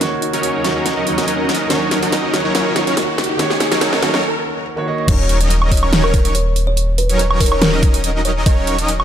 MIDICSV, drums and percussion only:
0, 0, Header, 1, 2, 480
1, 0, Start_track
1, 0, Key_signature, -6, "minor"
1, 0, Tempo, 422535
1, 12, Time_signature, 4, 2, 24, 8
1, 10274, End_track
2, 0, Start_track
2, 0, Title_t, "Drums"
2, 12, Note_on_c, 9, 38, 56
2, 12, Note_on_c, 9, 42, 78
2, 126, Note_off_c, 9, 38, 0
2, 126, Note_off_c, 9, 42, 0
2, 252, Note_on_c, 9, 42, 69
2, 366, Note_off_c, 9, 42, 0
2, 380, Note_on_c, 9, 42, 65
2, 492, Note_off_c, 9, 42, 0
2, 492, Note_on_c, 9, 42, 79
2, 606, Note_off_c, 9, 42, 0
2, 732, Note_on_c, 9, 38, 64
2, 732, Note_on_c, 9, 42, 62
2, 846, Note_off_c, 9, 38, 0
2, 846, Note_off_c, 9, 42, 0
2, 973, Note_on_c, 9, 38, 62
2, 973, Note_on_c, 9, 42, 78
2, 1087, Note_off_c, 9, 38, 0
2, 1087, Note_off_c, 9, 42, 0
2, 1212, Note_on_c, 9, 42, 65
2, 1326, Note_off_c, 9, 42, 0
2, 1340, Note_on_c, 9, 38, 59
2, 1340, Note_on_c, 9, 42, 66
2, 1452, Note_off_c, 9, 42, 0
2, 1452, Note_on_c, 9, 42, 77
2, 1454, Note_off_c, 9, 38, 0
2, 1565, Note_off_c, 9, 42, 0
2, 1692, Note_on_c, 9, 38, 73
2, 1692, Note_on_c, 9, 42, 51
2, 1756, Note_off_c, 9, 42, 0
2, 1756, Note_on_c, 9, 42, 67
2, 1806, Note_off_c, 9, 38, 0
2, 1870, Note_off_c, 9, 42, 0
2, 1932, Note_on_c, 9, 38, 74
2, 1932, Note_on_c, 9, 42, 77
2, 2045, Note_off_c, 9, 38, 0
2, 2045, Note_off_c, 9, 42, 0
2, 2173, Note_on_c, 9, 38, 77
2, 2173, Note_on_c, 9, 42, 68
2, 2287, Note_off_c, 9, 38, 0
2, 2287, Note_off_c, 9, 42, 0
2, 2301, Note_on_c, 9, 42, 62
2, 2413, Note_off_c, 9, 42, 0
2, 2413, Note_on_c, 9, 38, 77
2, 2413, Note_on_c, 9, 42, 77
2, 2527, Note_off_c, 9, 38, 0
2, 2527, Note_off_c, 9, 42, 0
2, 2653, Note_on_c, 9, 38, 77
2, 2653, Note_on_c, 9, 42, 59
2, 2767, Note_off_c, 9, 38, 0
2, 2767, Note_off_c, 9, 42, 0
2, 2894, Note_on_c, 9, 38, 81
2, 2894, Note_on_c, 9, 42, 76
2, 3007, Note_off_c, 9, 38, 0
2, 3007, Note_off_c, 9, 42, 0
2, 3133, Note_on_c, 9, 38, 85
2, 3133, Note_on_c, 9, 42, 65
2, 3247, Note_off_c, 9, 38, 0
2, 3247, Note_off_c, 9, 42, 0
2, 3262, Note_on_c, 9, 42, 64
2, 3374, Note_off_c, 9, 42, 0
2, 3374, Note_on_c, 9, 38, 87
2, 3374, Note_on_c, 9, 42, 76
2, 3488, Note_off_c, 9, 38, 0
2, 3488, Note_off_c, 9, 42, 0
2, 3615, Note_on_c, 9, 38, 90
2, 3615, Note_on_c, 9, 42, 49
2, 3679, Note_off_c, 9, 42, 0
2, 3679, Note_on_c, 9, 42, 66
2, 3728, Note_off_c, 9, 38, 0
2, 3792, Note_off_c, 9, 42, 0
2, 3854, Note_on_c, 9, 38, 89
2, 3854, Note_on_c, 9, 42, 75
2, 3967, Note_off_c, 9, 38, 0
2, 3967, Note_off_c, 9, 42, 0
2, 3981, Note_on_c, 9, 38, 80
2, 4094, Note_off_c, 9, 38, 0
2, 4094, Note_on_c, 9, 38, 94
2, 4094, Note_on_c, 9, 42, 67
2, 4207, Note_off_c, 9, 38, 0
2, 4207, Note_off_c, 9, 42, 0
2, 4221, Note_on_c, 9, 38, 83
2, 4221, Note_on_c, 9, 42, 63
2, 4332, Note_off_c, 9, 38, 0
2, 4332, Note_off_c, 9, 42, 0
2, 4332, Note_on_c, 9, 38, 96
2, 4332, Note_on_c, 9, 42, 74
2, 4445, Note_off_c, 9, 38, 0
2, 4445, Note_off_c, 9, 42, 0
2, 4461, Note_on_c, 9, 38, 90
2, 4573, Note_off_c, 9, 38, 0
2, 4573, Note_on_c, 9, 38, 98
2, 4573, Note_on_c, 9, 42, 58
2, 4687, Note_off_c, 9, 38, 0
2, 4687, Note_off_c, 9, 42, 0
2, 4701, Note_on_c, 9, 38, 89
2, 4814, Note_off_c, 9, 38, 0
2, 5293, Note_on_c, 9, 48, 61
2, 5407, Note_off_c, 9, 48, 0
2, 5421, Note_on_c, 9, 48, 67
2, 5534, Note_off_c, 9, 48, 0
2, 5661, Note_on_c, 9, 45, 83
2, 5772, Note_on_c, 9, 42, 83
2, 5772, Note_on_c, 9, 49, 102
2, 5774, Note_off_c, 9, 45, 0
2, 5774, Note_on_c, 9, 36, 121
2, 5886, Note_off_c, 9, 42, 0
2, 5886, Note_off_c, 9, 49, 0
2, 5887, Note_off_c, 9, 36, 0
2, 6013, Note_on_c, 9, 42, 71
2, 6127, Note_off_c, 9, 42, 0
2, 6141, Note_on_c, 9, 42, 68
2, 6253, Note_off_c, 9, 42, 0
2, 6253, Note_on_c, 9, 42, 82
2, 6366, Note_off_c, 9, 42, 0
2, 6381, Note_on_c, 9, 76, 61
2, 6493, Note_on_c, 9, 36, 62
2, 6493, Note_on_c, 9, 46, 92
2, 6495, Note_off_c, 9, 76, 0
2, 6558, Note_on_c, 9, 42, 66
2, 6607, Note_off_c, 9, 36, 0
2, 6607, Note_off_c, 9, 46, 0
2, 6621, Note_on_c, 9, 76, 58
2, 6672, Note_off_c, 9, 42, 0
2, 6733, Note_on_c, 9, 38, 118
2, 6733, Note_on_c, 9, 42, 83
2, 6734, Note_off_c, 9, 76, 0
2, 6846, Note_off_c, 9, 38, 0
2, 6846, Note_off_c, 9, 42, 0
2, 6860, Note_on_c, 9, 76, 75
2, 6972, Note_on_c, 9, 42, 67
2, 6973, Note_on_c, 9, 36, 106
2, 6974, Note_off_c, 9, 76, 0
2, 7086, Note_off_c, 9, 36, 0
2, 7086, Note_off_c, 9, 42, 0
2, 7100, Note_on_c, 9, 42, 70
2, 7212, Note_off_c, 9, 42, 0
2, 7212, Note_on_c, 9, 42, 83
2, 7325, Note_off_c, 9, 42, 0
2, 7453, Note_on_c, 9, 42, 68
2, 7566, Note_off_c, 9, 42, 0
2, 7692, Note_on_c, 9, 42, 79
2, 7806, Note_off_c, 9, 42, 0
2, 7931, Note_on_c, 9, 42, 71
2, 8044, Note_off_c, 9, 42, 0
2, 8060, Note_on_c, 9, 42, 66
2, 8172, Note_off_c, 9, 42, 0
2, 8172, Note_on_c, 9, 42, 80
2, 8285, Note_off_c, 9, 42, 0
2, 8300, Note_on_c, 9, 76, 60
2, 8412, Note_on_c, 9, 46, 91
2, 8413, Note_off_c, 9, 76, 0
2, 8413, Note_on_c, 9, 36, 64
2, 8476, Note_on_c, 9, 42, 66
2, 8525, Note_off_c, 9, 46, 0
2, 8526, Note_off_c, 9, 36, 0
2, 8540, Note_on_c, 9, 76, 59
2, 8589, Note_off_c, 9, 42, 0
2, 8652, Note_on_c, 9, 38, 121
2, 8652, Note_on_c, 9, 42, 77
2, 8653, Note_off_c, 9, 76, 0
2, 8765, Note_off_c, 9, 38, 0
2, 8765, Note_off_c, 9, 42, 0
2, 8892, Note_on_c, 9, 36, 113
2, 8892, Note_on_c, 9, 42, 67
2, 9005, Note_off_c, 9, 42, 0
2, 9006, Note_off_c, 9, 36, 0
2, 9020, Note_on_c, 9, 42, 68
2, 9132, Note_off_c, 9, 42, 0
2, 9132, Note_on_c, 9, 42, 80
2, 9245, Note_off_c, 9, 42, 0
2, 9371, Note_on_c, 9, 42, 64
2, 9485, Note_off_c, 9, 42, 0
2, 9612, Note_on_c, 9, 42, 77
2, 9613, Note_on_c, 9, 36, 127
2, 9725, Note_off_c, 9, 42, 0
2, 9726, Note_off_c, 9, 36, 0
2, 9852, Note_on_c, 9, 42, 68
2, 9966, Note_off_c, 9, 42, 0
2, 9980, Note_on_c, 9, 42, 65
2, 10093, Note_off_c, 9, 42, 0
2, 10093, Note_on_c, 9, 42, 75
2, 10206, Note_off_c, 9, 42, 0
2, 10221, Note_on_c, 9, 76, 60
2, 10274, Note_off_c, 9, 76, 0
2, 10274, End_track
0, 0, End_of_file